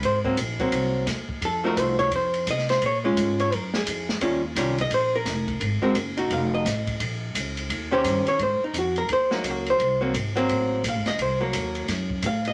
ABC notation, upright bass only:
X:1
M:4/4
L:1/8
Q:"Swing" 1/4=172
K:Abmix
V:1 name="Upright bass" clef=bass
A,,,2 B,,,2 C,,2 E,,2 | F,,2 C,,2 F,,2 C,2 | B,,2 A,,2 G,,2 F,,2 | E,,2 C,,2 B,,,2 F,,,2 |
A,,, z G,,,2 F,,,2 =A,,,2 | B,,,2 D,,2 E,,2 =G,, z | A,, z F,,2 E,,2 D,,2 | C,,2 A,,,2 =A,,,2 (3B,,, _A,,, G,,, |
C,,2 E,,2 G,,2 =A,,2 |]